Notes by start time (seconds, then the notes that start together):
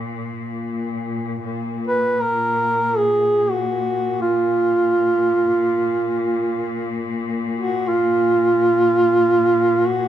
Already playing: A#2
1.44 A#2
1.88 B4
2.22 A#4
2.98 G#4
3.51 F#4
4.22 F4
7.57 F#4
7.88 F4
9.86 F#4